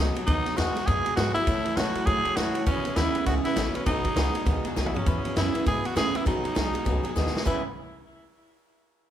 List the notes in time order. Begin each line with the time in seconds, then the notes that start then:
Already playing: C#2 B2 B3 D#4 F#4
0.00 F#3 D#4 G#4
0.15 B2 F#3 D#4 F#4 G#4, muted upright bass stroke, ride
0.27 D#2 B2 F#3 B3 D#4 F#4 G#4, kick, ride
0.45 B2 F#3 D#4 F#4 G#4, snare, ride
0.57 E2 B2 G#3 B3 D#4 F#4 G#4, snare, ride
0.75 B2 G#3 D#4 F#4 G#4, muted upright bass stroke, snare, ride
0.86 F#2 B2 G#3 B3 D#4 F#4 G#4, kick, snare, ride
1.05 B2 G#3 D#4 F#4 G#4, muted upright bass stroke, ride
1.16 G#2 B2 F#3 B3 D#4 F#4 G#4, snare, ride
1.34 B2 F#3 D#4 E4 G#4, muted upright bass stroke, ride
1.47 A2 E3 F#3 A3 E4 A4 C#5, kick, ride
1.65 A2 E3 E4 A4 C#5, muted upright bass stroke, ride
1.76 A2 B2 F#3 A3 E4 F#4 A4 C#5, snare, ride
1.95 A2 F#3 E4 A4 C#5, muted upright bass stroke, ride
2.06 A2 F#3 E4 G#4 A4 C#5, kick, ride
2.25 A2 F#3 E4 A4 C#5, muted upright bass stroke, ride
2.36 F#2 A2 E3 F#3 A3 E4 F#4 A4 C#5, snare, ride
2.55 A2 E3 E4 A4 C#5, ride
2.66 E2 B2 C#3 E3 B3 C#4 E4 G#4 B4, kick, ride
2.85 E2 B2 B3 E4 G#4 B4, muted upright bass stroke, ride
2.96 D#2 E2 C#3 E3 B3 E4 G#4 B4, snare, ride
3.14 E2 C#3 B3 E4 G#4 B4, muted upright bass stroke, ride
3.26 C#2 E2 C#3 B3 E4 F#4 G#4 B4, kick, snare, ride
3.44 E2 C#3 B3 E4 G#4 B4, muted upright bass stroke, snare, ride
3.56 A1 E2 B2 C#3 E3 B3 E4 G#4 B4, snare, ride
3.74 E2 B2 B3 C#4 E4 G#4 B4, muted upright bass stroke, ride
3.86 B1 B2 F#3 B3 D#4 F#4 G#4, kick, ride
4.04 B2 F#3 D#4 F#4 G#4, muted upright bass stroke, kick, ride
4.16 C#2 B2 G#3 B3 D#4 F#4 G#4, snare, ride
4.34 B2 G#3 D#4 F#4 G#4, muted upright bass stroke, ride
4.46 D#2 B2 G#3 B3 D#4 F#4 G#4, kick, ride
4.65 B2 G#3 D#4 F#4 G#4, ride
4.76 B1 B2 F#3 B3 D#4 F#4 G#4, snare
4.86 E4, mid tom
4.94 B2 F#3 C#4 D#4 F#4 G#4, muted upright bass stroke, floor tom
5.06 E2 B2 C#3 E3 B3 E4 G#4 B4, kick, ride
5.24 E2 B2 B3 E4 G#4 B4, muted upright bass stroke, ride
5.36 E2 F#2 C#3 E3 B3 E4 G#4 B4, snare, ride
5.54 E2 C#3 B3 E4 G#4 B4, muted upright bass stroke, ride
5.66 E2 G#2 B2 B3 E4 G#4 B4, kick, ride
5.84 E2 B2 B3 E4 F#4 G#4 B4, muted upright bass stroke, ride
5.95 E2 A2 C#3 E3 B3 E4 G#4 B4, snare, ride
6.14 E2 C#3 B3 E4 G#4 B4, muted upright bass stroke, ride
6.25 B2 F#3 B3 D#4 F#4 G#4, kick, ride
6.44 B2 F#3 D#4 F#4 G#4, muted upright bass stroke, ride
6.55 B1 B2 G#3 B3 D#4 F#4 G#4, snare, ride
6.74 B2 G#3 D#4 F#4 G#4, muted upright bass stroke, ride
6.85 C#2 B2 F#3 B3 D#4 F#4 G#4, kick, ride
7.03 B2 F#3 D#4 F#4 G#4, muted upright bass stroke, ride
7.16 D#2 B2 G#3 B3 D#4 F#4 G#4, snare
7.26 snare
7.33 B2 G#3 D#4 F#4 G#4, muted upright bass stroke, snare
7.45 E2 C#3 E3 G#3 B3 C#4 E4 G#4 B4, kick, crash